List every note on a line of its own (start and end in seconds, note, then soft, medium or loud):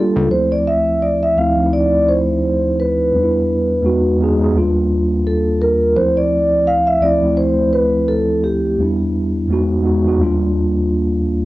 0.00 0.33 G3 loud
0.00 0.33 A#3 medium
0.00 0.33 D4 medium
0.00 0.33 F4 loud
0.00 0.29 A4 medium
0.16 0.29 C#2 medium
0.30 1.18 D2 medium
0.30 1.19 F3 medium
0.30 1.20 A3 medium
0.30 1.20 C4 medium
0.30 0.52 C5 medium
0.34 1.21 E4 medium
0.52 0.66 D5 medium
0.68 1.03 E5 medium
1.02 1.21 D5 medium
1.23 1.38 E5 medium
1.36 1.53 D2 medium
1.36 1.53 F3 medium
1.36 1.54 A3 medium
1.36 1.55 C4 medium
1.36 1.70 F5 medium
1.41 1.55 E4 medium
1.55 2.69 D2 medium
1.55 2.70 F3 medium
1.55 2.71 A3 medium
1.55 2.71 C4 medium
1.60 1.64 D#4 medium
1.66 2.75 E4 medium
1.73 2.09 D5 medium
2.08 2.81 C5 medium
2.80 4.16 B4 medium
3.12 3.80 E2 medium
3.12 3.84 G3 medium
3.12 3.82 B3 medium
3.12 3.85 D4 medium
3.17 3.23 D#4 medium
3.23 3.89 E4 medium
3.81 4.12 E2 medium
3.81 4.13 G#3 medium
3.81 4.13 B3 medium
3.81 4.14 D#4 medium
3.86 4.15 F#4 medium
4.18 4.35 E2 medium
4.18 4.36 G#3 medium
4.18 4.36 B3 medium
4.18 4.37 D#4 medium
4.23 4.38 G#4 medium
4.38 4.54 E2 medium
4.38 4.54 G#3 medium
4.38 4.55 B3 medium
4.38 4.56 D#4 medium
4.43 4.56 G#4 medium
4.53 5.69 D#2 medium
4.53 5.70 G3 medium
4.53 5.71 A#3 medium
4.53 5.71 D4 medium
4.58 5.72 F4 loud
5.27 5.62 A4 medium
5.61 5.97 A#4 medium
5.95 6.83 D2 medium
5.95 6.84 F3 medium
5.95 6.85 A3 medium
5.95 6.85 C4 medium
5.95 6.17 C5 medium
6.00 6.86 E4 medium
6.17 6.68 D5 medium
6.67 6.88 F5 medium
6.87 7.02 E5 medium
7.00 7.17 D2 medium
7.00 7.18 F3 medium
7.00 7.19 A3 medium
7.00 7.19 C4 medium
7.00 7.38 D5 medium
7.05 7.20 E4 medium
7.20 8.34 D2 medium
7.20 8.35 F3 medium
7.20 8.35 A3 medium
7.20 8.36 C4 medium
7.25 8.37 E4 medium
7.37 7.74 C5 medium
7.73 8.09 B4 medium
8.08 8.44 A4 medium
8.44 8.80 G4 medium
8.77 9.46 E2 medium
8.77 9.49 G3 medium
8.77 9.49 B3 medium
8.77 9.50 D4 medium
8.82 9.51 E4 medium
9.48 9.78 E2 medium
9.48 9.79 G#3 medium
9.48 9.79 B3 medium
9.48 9.80 D#4 medium
9.53 9.80 F#4 medium
9.81 9.99 E2 medium
9.81 10.00 G#3 medium
9.81 10.00 B3 medium
9.81 10.01 D#4 medium
9.86 10.02 F#4 medium
10.03 10.19 E2 medium
10.03 10.19 G#3 medium
10.03 10.20 B3 medium
10.03 10.21 D#4 medium
10.08 10.21 F#4 medium
10.18 11.34 D#2 medium
10.18 11.35 G3 medium
10.18 11.35 A#3 medium
10.18 11.36 D4 medium
10.23 11.37 F4 loud